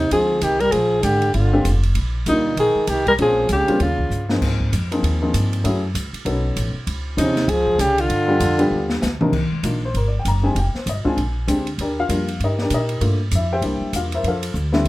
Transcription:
Already playing: upright bass D#2, trombone C3
0.11 upright bass D2, trombone F3, upright piano G#3 C4 D#4 F4 G#4, alto saxophone G#4, kick, ride
0.41 upright bass C2, trombone D#3, alto saxophone G4, kick, hi-hat pedal, ride
0.60 trombone G3, alto saxophone A#4, ride
0.72 upright bass A#1, trombone F3, alto saxophone G#4, kick, ride
1.02 upright bass G#1, trombone D3, alto saxophone G4, kick, hi-hat pedal, ride
1.22 ride
1.34 upright bass G1, trombone D3, alto saxophone F4, kick, ride
1.53 upright piano G#3 C4 D4 F4 G4
1.65 upright bass F1, kick, hi-hat pedal, ride
1.83 ride
1.95 upright bass A#1, kick, ride
2.26 upright bass D2, trombone A#2, upright piano G3 A#3 D4 D#4 F4, alto saxophone D#4, kick, hi-hat pedal, ride
2.57 upright bass A#1, trombone D#3, alto saxophone G#4, kick, ride
2.75 muted upright bass stroke
2.87 upright bass C2, trombone D#3, alto saxophone G4, kick, hi-hat pedal, ride
3.07 trombone G3, alto saxophone A#4, kick, ride
3.18 upright bass A#1, trombone F3, upright piano G#3 A#3 C4 C#4 F4, alto saxophone G#4, kick, ride
3.49 upright bass C#2, trombone C#3, alto saxophone G4, kick, hi-hat pedal, ride
3.67 upright piano G3 A#3 C4 C#4 F4, muted upright bass stroke, ride
3.80 upright bass D#2, trombone C#3, alto saxophone F4, kick, ride
3.99 kick
4.10 upright bass G2, hi-hat pedal
4.29 upright piano F3 A#3 C4 D#4 G#4, snare
4.41 upright bass G#2, kick, snare, crash
4.60 kick
4.73 upright bass F2, kick, hi-hat pedal, ride
4.92 upright piano F3 A#3 C4 D#4 G#4, ride
5.03 upright bass D#2, kick, ride
5.22 upright piano F3 A#3 C4 D#4 G#4
5.34 upright bass G2, kick, hi-hat pedal, ride
5.53 ride
5.64 upright bass F#2, upright piano F#3 A3 C#4 E4 G#4, kick, ride
5.94 upright bass C#2, kick, hi-hat pedal, ride
6.13 muted upright bass stroke, ride
6.25 upright bass B1, upright piano F#3 B3 C#4 D#4 A4, kick, ride
6.56 upright bass A1, kick, hi-hat pedal, ride
6.75 muted upright bass stroke
6.87 upright bass C#2, kick, ride
7.17 upright bass D#2, trombone C3, upright piano F3 C4 C#4 D#4 G#4, alto saxophone D#4, kick, hi-hat pedal, ride
7.37 snare, ride
7.48 upright bass C#2, trombone F3, alto saxophone G#4, kick, ride
7.67 kick
7.79 upright bass C2, trombone C#3, alto saxophone G4, kick, hi-hat pedal, ride
7.98 trombone D3, alto saxophone F4, ride
8.10 upright bass G2, kick, ride
8.28 upright piano G3 B3 D4 F4 G4
8.40 upright bass F2, kick, hi-hat pedal, ride
8.58 upright piano G3 B3 D4 F4 G4, ride
8.71 upright bass D#2
8.90 snare
9.02 upright bass D2, snare, hi-hat pedal
9.20 upright piano C3 F3 A#3 D4 D#4 A#4, muted upright bass stroke, mid tom
9.32 upright bass C2, kick, crash
9.52 muted upright bass stroke
9.63 upright bass A#1, upright piano A#3 D4 D#4 F4, kick, hi-hat pedal, ride
9.85 upright piano C5
9.94 upright bass G1, upright piano A#4, kick, ride
10.08 upright piano D5
10.19 upright piano G5
10.25 upright bass F#1, upright piano A#5, kick, hi-hat pedal, ride
10.43 upright piano G#3 C4 D#4 G4 G#5
10.55 upright bass F1, upright piano G5, kick, ride
10.75 upright piano C5, muted upright bass stroke, snare
10.86 upright bass G1, upright piano D#5, kick, hi-hat pedal, ride
11.04 upright piano G#3 C4 D4 F4 G#5, muted upright bass stroke, kick
11.17 upright bass A#1, kick, ride
11.47 upright bass D2, upright piano G#3 C4 D4 G4, kick, hi-hat pedal, ride
11.67 ride
11.78 upright bass D#2, upright piano D4 G4 A#4 D5, kick, ride
11.99 upright piano F4 F5
12.09 upright bass F2, upright piano G3 A#3 D4 F4, kick, hi-hat pedal, ride
12.28 ride
12.40 upright bass G2, upright piano D#4, kick, ride
12.44 upright piano G4 A#4 D#5
12.59 upright piano D4 G4 A#4 D5, snare
12.70 upright bass A#2, upright piano G4 A#4, kick, hi-hat pedal, ride
12.74 upright piano D#4 D#5
12.89 ride
13.01 upright bass G2, upright piano A3 A#3 D4 F4, kick, ride
13.31 upright bass F2, upright piano E5, kick, hi-hat pedal, ride
13.36 upright piano E4
13.53 upright piano G4 C5 E5 G5
13.62 upright bass C2, upright piano G3 A#3 D4 E4, kick, ride
13.81 muted upright bass stroke
13.93 upright bass E2, upright piano F4 F5, kick, hi-hat pedal, ride
14.12 upright piano E4 A#4 C5 E5, ride
14.23 upright bass F2, upright piano C5, kick, ride
14.28 upright piano F4 A4 F5
14.43 ride
14.54 upright bass D2, kick, hi-hat pedal
14.72 upright piano G3 A3 C4 E4, snare
14.85 upright bass C2, kick

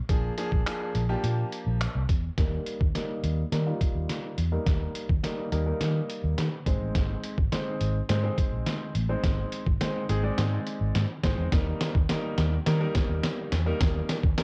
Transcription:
0.09 fingered electric bass A#1, grand piano F3 A#3 D4 G#4, kick, closed hi-hat
0.38 grand piano F3 A#3 D4 G#4, closed hi-hat
0.52 fingered electric bass A#1, kick
0.66 grand piano F3 A#3 D4 G#4, finger snap, closed hi-hat
0.95 fingered electric bass A#1, closed hi-hat
1.09 grand piano F3 A#3 D4 G4
1.24 fingered electric bass A#2, closed hi-hat
1.52 closed hi-hat
1.66 fingered electric bass A#1
1.81 finger snap, closed hi-hat
1.95 fingered electric bass C2
2.09 fingered electric bass E2, kick, closed hi-hat
2.38 fingered electric bass D#2, grand piano G3 A#3 D#4 A#4, kick, snare, closed hi-hat
2.66 closed hi-hat
2.81 fingered electric bass D#2, kick
2.95 grand piano G3 A#3 D#4 A#4, snare, closed hi-hat
3.24 fingered electric bass D#2, closed hi-hat
3.52 fingered electric bass D#3, grand piano G3 A#3 D#4 A#4, snare, closed hi-hat
3.66 grand piano G3 A#3 D#4 F4
3.81 kick, closed hi-hat
3.95 fingered electric bass D#2
4.09 snare, closed hi-hat
4.38 fingered electric bass E2, closed hi-hat
4.52 grand piano G3 A#3 D#4 A#4
4.66 fingered electric bass D#2, kick, snare, closed hi-hat
4.95 closed hi-hat
5.09 fingered electric bass D#2, kick
5.23 grand piano G3 A#3 D#4 A#4, snare, closed hi-hat
5.52 fingered electric bass D#2, grand piano G3 A#3 D#4 A#4, closed hi-hat
5.66 grand piano G3 A#3 D#4 A#4
5.81 fingered electric bass D#3, snare, closed hi-hat
6.10 closed hi-hat
6.24 fingered electric bass D#2
6.38 fingered electric bass D#3, snare, closed hi-hat
6.66 fingered electric bass G#1, grand piano G#3 C4 D#4 C5, kick, closed hi-hat
6.81 fingered electric bass A1
6.95 fingered electric bass G#1, kick, snare, closed hi-hat
7.24 closed hi-hat
7.38 fingered electric bass G#1, kick
7.52 grand piano G#3 C4 D#4 C5, snare, closed hi-hat
7.81 fingered electric bass G#1, closed hi-hat
8.09 fingered electric bass G#2, grand piano G#3 C4 D#4 C5, snare, closed hi-hat
8.23 grand piano G#3 C4 D#4 C5
8.38 kick, closed hi-hat
8.52 fingered electric bass A#1
8.66 snare, closed hi-hat
8.95 fingered electric bass A1, closed hi-hat
9.09 grand piano G#3 C4 D#4 C5
9.24 fingered electric bass G#1, kick, snare, closed hi-hat
9.52 closed hi-hat
9.66 fingered electric bass G#1, kick
9.80 grand piano G#3 C4 D#4 C5, snare, closed hi-hat
10.09 fingered electric bass G#1, grand piano G#3 C4 D#4 G#4, closed hi-hat
10.23 grand piano G#3 C4 D#4 D5
10.38 fingered electric bass G#2, snare, closed hi-hat
10.67 closed hi-hat
10.81 fingered electric bass G#1
10.95 fingered electric bass G#2, snare, closed hi-hat
11.23 fingered electric bass G#1, grand piano G#3 C4 D#4 C5, kick, snare, closed hi-hat
11.38 fingered electric bass E2
11.52 fingered electric bass D#2, grand piano G3 A#3 D#4 A#4, kick, snare, closed hi-hat
11.81 snare, closed hi-hat
11.95 fingered electric bass D#2, kick
12.09 grand piano G3 A#3 D#4 A#4, snare, closed hi-hat
12.38 fingered electric bass D#2, snare, closed hi-hat
12.66 fingered electric bass D#3, grand piano G3 A#3 D#4 A#4, snare, closed hi-hat
12.80 grand piano G3 A#3 D#4 A#4
12.95 kick, snare, closed hi-hat
13.09 fingered electric bass D#2
13.24 snare, closed hi-hat
13.52 fingered electric bass E2, snare, closed hi-hat
13.66 grand piano G3 A#3 D#4 A#4
13.81 fingered electric bass D#2, kick, snare, closed hi-hat
14.09 snare, closed hi-hat
14.24 fingered electric bass D#2, kick
14.38 grand piano G3 A#3 D#4 A#4, snare, closed hi-hat

